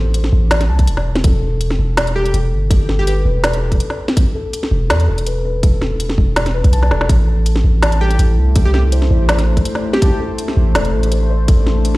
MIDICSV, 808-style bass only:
0, 0, Header, 1, 2, 480
1, 0, Start_track
1, 0, Key_signature, 0, "minor"
1, 0, Tempo, 365854
1, 1627, Time_signature, 4, 2, 24, 8
1, 15711, End_track
2, 0, Start_track
2, 0, Title_t, "808-style bass"
2, 0, Program_c, 0, 38
2, 0, Note_on_c, 0, 33, 89
2, 413, Note_off_c, 0, 33, 0
2, 428, Note_on_c, 0, 33, 91
2, 906, Note_on_c, 0, 36, 93
2, 926, Note_off_c, 0, 33, 0
2, 1147, Note_on_c, 0, 28, 94
2, 1167, Note_off_c, 0, 36, 0
2, 1613, Note_off_c, 0, 28, 0
2, 1629, Note_on_c, 0, 28, 96
2, 2333, Note_off_c, 0, 28, 0
2, 2347, Note_on_c, 0, 28, 91
2, 3052, Note_off_c, 0, 28, 0
2, 3066, Note_on_c, 0, 28, 106
2, 3307, Note_on_c, 0, 31, 104
2, 3327, Note_off_c, 0, 28, 0
2, 4252, Note_off_c, 0, 31, 0
2, 4267, Note_on_c, 0, 28, 94
2, 4972, Note_off_c, 0, 28, 0
2, 6185, Note_on_c, 0, 28, 97
2, 6426, Note_on_c, 0, 40, 81
2, 6446, Note_off_c, 0, 28, 0
2, 6667, Note_on_c, 0, 28, 81
2, 6686, Note_off_c, 0, 40, 0
2, 8092, Note_off_c, 0, 28, 0
2, 8106, Note_on_c, 0, 28, 95
2, 8698, Note_off_c, 0, 28, 0
2, 8716, Note_on_c, 0, 35, 104
2, 9067, Note_on_c, 0, 28, 94
2, 9086, Note_off_c, 0, 35, 0
2, 9289, Note_off_c, 0, 28, 0
2, 9307, Note_on_c, 0, 33, 96
2, 10012, Note_off_c, 0, 33, 0
2, 10026, Note_on_c, 0, 33, 100
2, 10732, Note_off_c, 0, 33, 0
2, 10746, Note_on_c, 0, 33, 106
2, 10986, Note_on_c, 0, 36, 107
2, 11006, Note_off_c, 0, 33, 0
2, 11932, Note_off_c, 0, 36, 0
2, 11947, Note_on_c, 0, 33, 93
2, 12653, Note_off_c, 0, 33, 0
2, 13866, Note_on_c, 0, 33, 98
2, 14104, Note_on_c, 0, 28, 85
2, 14124, Note_off_c, 0, 33, 0
2, 14344, Note_on_c, 0, 33, 88
2, 14364, Note_off_c, 0, 28, 0
2, 15711, Note_off_c, 0, 33, 0
2, 15711, End_track
0, 0, End_of_file